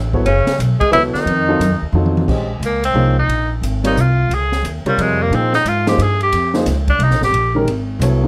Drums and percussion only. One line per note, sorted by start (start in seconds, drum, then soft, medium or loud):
0.13 kick medium
0.26 ride medium
0.47 snare medium
0.47 ride medium
0.60 hi-hat pedal soft
0.60 ride medium
0.81 kick medium
0.81 ride soft
0.93 ride medium
1.14 snare soft
1.27 ride medium
1.61 hi-hat pedal medium
1.61 ride medium
1.94 mid tom medium
2.06 mid tom medium
2.17 mid tom medium
2.28 kick medium
2.28 crash medium
2.63 hi-hat pedal soft
2.63 ride medium
2.84 ride medium
3.29 ride medium
3.63 hi-hat pedal medium
3.63 ride medium
3.84 ride medium
3.97 hi-hat pedal medium
4.31 ride medium
4.52 snare soft
4.65 hi-hat pedal medium
4.65 ride medium
4.86 ride soft
4.99 ride medium
5.33 ride medium
5.53 snare soft
5.66 hi-hat pedal soft
5.66 ride medium
5.87 snare medium
5.87 ride medium
5.99 ride medium
6.21 ride soft
6.33 ride medium
6.54 snare medium
6.66 snare soft
6.66 hi-hat pedal medium
6.66 ride medium
6.88 kick medium
6.88 ride soft
7.00 ride medium
7.11 snare soft
7.22 snare soft
7.34 ride medium
7.68 ride medium
8.02 hi-hat pedal medium
8.02 ride medium